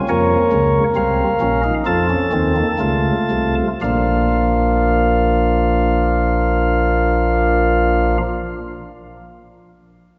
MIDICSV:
0, 0, Header, 1, 2, 480
1, 0, Start_track
1, 0, Tempo, 859599
1, 58, Time_signature, 4, 2, 24, 8
1, 540, Tempo, 927357
1, 1500, Tempo, 1016949
1, 4976, End_track
2, 0, Start_track
2, 0, Title_t, "Pipe organ"
2, 0, Program_c, 0, 19
2, 50, Note_on_c, 0, 70, 86
2, 51, Note_on_c, 0, 41, 86
2, 51, Note_on_c, 0, 53, 85
2, 51, Note_on_c, 0, 73, 81
2, 52, Note_on_c, 0, 58, 81
2, 201, Note_off_c, 0, 41, 0
2, 201, Note_off_c, 0, 53, 0
2, 292, Note_on_c, 0, 49, 75
2, 293, Note_on_c, 0, 37, 75
2, 444, Note_off_c, 0, 49, 0
2, 445, Note_off_c, 0, 37, 0
2, 468, Note_off_c, 0, 73, 0
2, 469, Note_off_c, 0, 58, 0
2, 536, Note_on_c, 0, 36, 71
2, 536, Note_on_c, 0, 60, 65
2, 538, Note_on_c, 0, 48, 70
2, 539, Note_on_c, 0, 77, 70
2, 681, Note_off_c, 0, 36, 0
2, 681, Note_off_c, 0, 60, 0
2, 682, Note_off_c, 0, 48, 0
2, 769, Note_on_c, 0, 34, 74
2, 769, Note_on_c, 0, 61, 77
2, 770, Note_on_c, 0, 46, 72
2, 871, Note_off_c, 0, 61, 0
2, 875, Note_off_c, 0, 70, 0
2, 886, Note_on_c, 0, 63, 68
2, 916, Note_off_c, 0, 34, 0
2, 917, Note_off_c, 0, 46, 0
2, 941, Note_off_c, 0, 77, 0
2, 989, Note_off_c, 0, 63, 0
2, 1003, Note_on_c, 0, 65, 76
2, 1004, Note_on_c, 0, 41, 75
2, 1004, Note_on_c, 0, 53, 76
2, 1004, Note_on_c, 0, 69, 77
2, 1004, Note_on_c, 0, 81, 80
2, 1108, Note_off_c, 0, 65, 0
2, 1124, Note_on_c, 0, 61, 72
2, 1155, Note_off_c, 0, 41, 0
2, 1155, Note_off_c, 0, 53, 0
2, 1230, Note_off_c, 0, 61, 0
2, 1242, Note_on_c, 0, 51, 75
2, 1243, Note_on_c, 0, 39, 74
2, 1245, Note_on_c, 0, 60, 72
2, 1353, Note_off_c, 0, 60, 0
2, 1364, Note_on_c, 0, 58, 71
2, 1399, Note_off_c, 0, 51, 0
2, 1400, Note_off_c, 0, 39, 0
2, 1428, Note_off_c, 0, 69, 0
2, 1476, Note_off_c, 0, 58, 0
2, 1486, Note_on_c, 0, 37, 65
2, 1488, Note_on_c, 0, 57, 68
2, 1489, Note_on_c, 0, 49, 72
2, 1490, Note_on_c, 0, 65, 66
2, 1637, Note_off_c, 0, 37, 0
2, 1638, Note_off_c, 0, 49, 0
2, 1730, Note_on_c, 0, 36, 67
2, 1731, Note_on_c, 0, 48, 66
2, 1843, Note_off_c, 0, 81, 0
2, 1880, Note_off_c, 0, 36, 0
2, 1881, Note_off_c, 0, 48, 0
2, 1902, Note_off_c, 0, 57, 0
2, 1903, Note_off_c, 0, 65, 0
2, 1969, Note_on_c, 0, 62, 77
2, 1970, Note_on_c, 0, 65, 74
2, 1970, Note_on_c, 0, 77, 74
2, 1971, Note_on_c, 0, 34, 73
2, 1973, Note_on_c, 0, 46, 69
2, 1984, Note_on_c, 0, 58, 63
2, 1986, Note_on_c, 0, 53, 63
2, 4026, Note_off_c, 0, 62, 0
2, 4027, Note_off_c, 0, 65, 0
2, 4028, Note_off_c, 0, 34, 0
2, 4028, Note_off_c, 0, 77, 0
2, 4031, Note_off_c, 0, 46, 0
2, 4042, Note_off_c, 0, 58, 0
2, 4044, Note_off_c, 0, 53, 0
2, 4976, End_track
0, 0, End_of_file